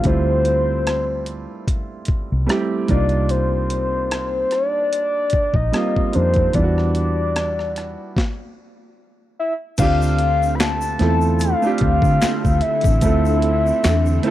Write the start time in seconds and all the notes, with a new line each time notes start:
Already playing: G3 A3 C4 D4 F4
0.04 D2 G3 A3 C4 E4 C5, kick, closed hi-hat
0.08 F4
0.45 closed hi-hat
0.87 cross-stick, closed hi-hat
1.26 closed hi-hat
1.68 kick, closed hi-hat
2.05 muted fingered electric bass stroke, kick, closed hi-hat
2.32 C2
2.46 G3 A3 C4 E4, cross-stick, closed hi-hat
2.51 G4
2.87 C2 G3 A#3 D4 D#4 F4 D5, kick, closed hi-hat
3.09 closed hi-hat
3.29 C5, closed hi-hat
3.70 closed hi-hat
4.11 cross-stick, closed hi-hat
4.51 D5, cross-stick, closed hi-hat
4.93 closed hi-hat
5.30 kick, closed hi-hat
5.34 muted fingered electric bass stroke
5.54 A#1 D#5, kick
5.72 G3 A#3 C4 D#4, cross-stick, closed hi-hat
5.77 F4
5.96 kick
6.12 F2 G3 A#3 D4 D#4 C5, closed hi-hat
6.17 F4
6.34 kick, closed hi-hat
6.53 E2 G3 B3 D4 E4 D5, kick, closed hi-hat
6.57 F4
6.64 F#4
6.78 cross-stick
6.95 closed hi-hat
7.36 cross-stick, closed hi-hat
7.59 cross-stick
7.76 cross-stick, closed hi-hat
8.17 kick, snare
9.39 E5
9.78 D2 D3 A3 C4 D4 F4 A4 F5, kick, closed hi-hat, crash, shaker
9.82 G4
10.02 shaker
10.18 closed hi-hat
10.43 shaker
10.55 B5
10.60 A5, finger snap, snare, closed hi-hat, shaker
10.81 shaker
10.99 E2 A3 C4 E4 F4, snare, closed hi-hat
11.03 A4
11.21 shaker
11.39 F5, closed hi-hat, shaker
11.62 A3 C4 D4 F4, shaker
11.66 G4
11.78 kick, closed hi-hat
11.82 D2
12.02 D3, kick, shaker
12.22 finger snap, snare, closed hi-hat, shaker
12.23 finger snap, muted fingered electric bass stroke
12.45 D2, kick, shaker
12.61 E5, closed hi-hat
12.81 A1, kick, closed hi-hat, shaker
13.01 D2 A3 C4 E4 F4, kick, closed hi-hat, shaker
13.06 A4
13.25 shaker
13.42 closed hi-hat
13.66 shaker
13.84 E2, finger snap, snare, closed hi-hat, shaker
14.06 shaker
14.23 A3 C4 E4 F4, closed hi-hat
14.27 A4